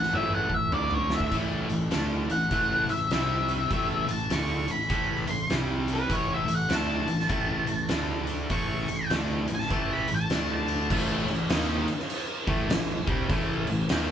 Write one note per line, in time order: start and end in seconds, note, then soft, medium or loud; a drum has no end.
0.00 0.12 A1 medium
0.00 0.14 F#5 medium
0.00 snare soft
0.13 0.48 A1 medium
0.13 0.48 A2 medium
0.13 0.49 E3 medium
0.13 0.50 A3 medium
0.13 0.33 E5 medium
0.13 high tom medium
0.34 0.54 F#5 medium
0.49 0.71 A1 medium
0.49 0.68 A2 medium
0.49 0.68 E3 medium
0.49 kick medium
0.54 0.73 E5 medium
0.72 1.28 D2 medium
0.72 1.32 D3 medium
0.72 1.32 A3 medium
0.72 1.32 D4 medium
0.72 0.94 D5 medium
0.72 mid tom medium
0.91 1.15 C#5 medium
0.91 mid tom medium
1.10 snare medium
1.15 1.33 E5 medium
1.20 kick medium
1.32 1.67 A1 medium
1.32 1.68 A2 medium
1.32 1.68 E3 medium
1.32 1.69 A3 medium
1.32 kick medium
1.32 closed hi-hat medium
1.32 crash medium
1.69 1.91 A1 medium
1.69 1.87 A2 medium
1.69 1.87 E3 medium
1.69 closed hi-hat medium
1.91 2.27 D2 medium
1.91 2.28 D3 medium
1.91 2.28 A3 medium
1.91 2.28 D4 medium
1.91 snare loud
1.91 closed hi-hat medium
2.29 2.50 A1 medium
2.29 2.47 A2 medium
2.29 2.48 E3 medium
2.29 2.88 F#5 medium
2.29 closed hi-hat medium
2.51 2.86 A1 medium
2.51 2.88 A2 medium
2.51 2.88 E3 medium
2.51 2.88 A3 loud
2.51 kick medium
2.51 closed hi-hat medium
2.88 3.09 A1 medium
2.88 3.08 A2 medium
2.88 3.08 E3 medium
2.88 3.11 E5 medium
2.88 closed hi-hat medium
3.11 3.67 C2 medium
3.11 3.71 C3 medium
3.11 3.71 G3 medium
3.11 3.72 C4 loud
3.11 4.06 E5 medium
3.11 snare loud
3.11 closed hi-hat medium
3.48 closed hi-hat medium
3.70 4.06 A1 medium
3.70 4.07 A2 medium
3.70 4.07 E3 medium
3.70 4.08 A3 medium
3.70 kick loud
3.70 closed hi-hat medium
4.08 4.30 A1 medium
4.08 4.26 A2 medium
4.08 4.26 E3 medium
4.08 4.31 A5 medium
4.08 closed hi-hat medium
4.30 4.66 D2 medium
4.30 4.67 D3 medium
4.30 4.67 A3 medium
4.30 4.67 D4 medium
4.30 4.68 C#6 medium
4.30 snare loud
4.30 closed hi-hat medium
4.67 4.89 A1 medium
4.67 4.86 A2 medium
4.67 4.86 E3 medium
4.67 closed hi-hat medium
4.71 5.28 B5 medium
4.89 5.25 A1 medium
4.89 5.26 A2 medium
4.89 5.27 E3 medium
4.89 5.27 A3 medium
4.89 kick loud
4.89 closed hi-hat medium
5.27 5.49 A1 medium
5.27 5.46 A2 medium
5.27 5.46 E3 medium
5.27 5.51 C6 loud
5.27 closed hi-hat medium
5.50 6.07 C2 medium
5.50 6.08 C3 medium
5.50 6.09 G3 medium
5.50 6.09 C4 medium
5.50 snare loud
5.50 closed hi-hat medium
5.88 closed hi-hat medium
5.93 6.11 B4 medium
6.08 6.45 A1 medium
6.08 6.46 A2 medium
6.08 6.46 E3 medium
6.08 6.47 A3 medium
6.08 kick medium
6.08 closed hi-hat medium
6.13 6.34 C#5 medium
6.34 6.52 E5 medium
6.47 6.69 A1 medium
6.47 6.65 A2 medium
6.47 6.65 E3 medium
6.47 closed hi-hat medium
6.55 6.74 F#5 medium
6.69 7.05 D2 medium
6.69 7.06 D3 medium
6.69 7.07 A3 medium
6.69 7.07 D4 loud
6.69 snare loud
6.69 closed hi-hat medium
6.74 8.48 A5 loud
7.07 7.29 A1 medium
7.07 7.26 A2 medium
7.07 7.26 E3 medium
7.07 closed hi-hat medium
7.20 snare soft
7.29 7.65 A1 medium
7.29 7.66 A2 medium
7.29 7.67 E3 medium
7.29 7.66 A3 loud
7.29 kick loud
7.29 closed hi-hat medium
7.67 7.89 A1 medium
7.67 7.86 A2 medium
7.67 7.86 E3 medium
7.67 closed hi-hat medium
7.88 8.47 D2 medium
7.88 8.49 D3 medium
7.88 8.49 A3 medium
7.88 8.49 D4 medium
7.88 snare loud
7.88 closed hi-hat medium
8.27 closed hi-hat medium
8.50 8.85 A1 medium
8.50 8.87 A2 medium
8.50 8.87 E3 medium
8.50 8.87 A3 medium
8.50 9.09 C#6 loud
8.50 kick medium
8.50 closed hi-hat medium
8.88 9.10 A1 medium
8.88 9.06 A2 medium
8.88 9.06 E3 medium
8.88 closed hi-hat medium
9.10 9.46 D2 medium
9.10 9.47 D3 medium
9.10 9.47 A3 medium
9.10 9.48 D4 medium
9.10 snare loud
9.10 closed hi-hat medium
9.48 9.70 A1 medium
9.48 9.66 A2 medium
9.48 9.66 E3 medium
9.48 closed hi-hat medium
9.55 9.92 A5 medium
9.60 snare soft
9.70 10.05 A1 medium
9.70 10.07 A2 medium
9.70 10.07 E3 medium
9.70 10.07 A3 medium
9.70 kick loud
9.70 closed hi-hat medium
9.93 10.11 B5 medium
10.08 10.30 A1 medium
10.08 10.27 A2 medium
10.08 10.27 E3 medium
10.08 closed hi-hat medium
10.14 10.51 A5 medium
10.30 10.87 D2 medium
10.30 10.90 D3 medium
10.30 10.90 A3 medium
10.30 10.90 D4 medium
10.30 snare loud
10.30 closed hi-hat medium
10.54 10.91 A5 medium
10.68 closed hi-hat medium
10.90 11.25 A1 medium
10.90 11.27 A2 medium
10.90 11.27 E3 loud
10.90 11.27 A3 loud
10.90 kick loud
10.90 crash loud
10.90 crash medium
11.28 11.49 A1 medium
11.28 11.46 A2 medium
11.28 11.46 E3 medium
11.28 crash medium
11.50 11.85 D#2 loud
11.50 11.87 D#3 medium
11.50 11.87 A#3 medium
11.50 11.87 D#4 medium
11.50 snare loud
11.50 crash medium
11.88 crash medium
12.00 snare soft
12.10 crash medium
12.47 12.69 A1 medium
12.47 12.68 A2 medium
12.47 12.69 E3 loud
12.47 12.70 A3 loud
12.47 kick loud
12.47 crash medium
12.69 13.05 A1 medium
12.69 13.00 A2 medium
12.69 13.00 E3 medium
12.69 snare loud
12.69 crash medium
13.07 13.28 C2 medium
13.07 13.29 C3 medium
13.07 13.29 G3 medium
13.07 13.29 C4 loud
13.07 kick loud
13.07 crash medium
13.30 13.65 A1 medium
13.30 13.66 A2 loud
13.30 13.67 E3 loud
13.30 13.67 A3 loud
13.30 kick loud
13.30 crash medium
13.67 13.88 A1 medium
13.67 13.86 A2 medium
13.67 13.87 E3 medium
13.67 crash medium
13.89 14.11 D#2 loud
13.89 14.11 D#3 medium
13.89 14.11 A#3 medium
13.89 14.11 D#4 loud
13.89 snare loud
13.89 crash medium